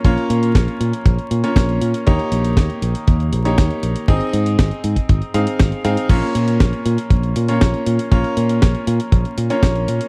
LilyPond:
<<
  \new Staff \with { instrumentName = "Grand piano" } { \time 4/4 \key bes \minor \tempo 4 = 119 <bes des' f' des''>2~ <bes des' f' des''>8. <bes des' f' des''>4~ <bes des' f' des''>16 | <bes ees' g' des''>2~ <bes ees' g' des''>8. <bes ees' g' des''>4~ <bes ees' g' des''>16 | <c' ees' aes' ees''>2~ <c' ees' aes' ees''>8 <c' ees' aes' f''>4 <c' ees' aes' f''>8 | <bes des' f' des''>2~ <bes des' f' des''>8. <bes des' f' des''>4~ <bes des' f' des''>16 |
<bes des' f' des''>2~ <bes des' f' des''>8. <bes des' f' des''>4~ <bes des' f' des''>16 | }
  \new Staff \with { instrumentName = "Fingered electric bass" } { \clef bass \time 4/4 \key bes \minor bes,,8 bes,8 bes,,8 bes,8 bes,,8 bes,8 bes,,8 bes,8 | ees,8 bes,,8 ees,8 bes,,8 ees,8 bes,,8 ees,8 bes,,8 | aes,,8 aes,8 aes,,8 aes,8 aes,,8 aes,8 aes,,8 aes,8 | bes,,8 bes,8 bes,,8 bes,8 bes,,8 bes,8 bes,,8 bes,8 |
bes,,8 bes,8 bes,,8 bes,8 bes,,8 bes,8 bes,,8 bes,8 | }
  \new DrumStaff \with { instrumentName = "Drums" } \drummode { \time 4/4 <hh bd>16 hh16 hh16 hh16 <hh bd sn>16 hh16 hh16 hh16 <hh bd>16 hh16 hh16 hh16 <hh bd sn>16 hh16 hh16 hh16 | <hh bd>16 hh16 hh16 hh16 <hh bd sn>16 hh16 hh16 hh16 <hh bd>16 hh16 hh16 hh16 <hh bd sn>16 hh16 hh16 hh16 | <hh bd>16 hh16 hh16 hh16 <hh bd sn>16 hh16 hh16 <hh bd>16 <hh bd>16 hh16 hh16 hh16 <hh bd sn>16 hh16 hh16 hh16 | <cymc hh bd>16 hh16 hh16 hh16 <hh bd sn>16 hh16 hh16 hh16 <hh bd>16 hh16 hh16 hh16 <hh bd sn>16 hh16 hh16 hh16 |
<hh bd>16 hh16 hh16 hh16 <hh bd sn>16 hh16 hh16 hh16 <hh bd>16 hh16 hh16 hh16 <hh bd sn>16 hh16 hh16 hh16 | }
>>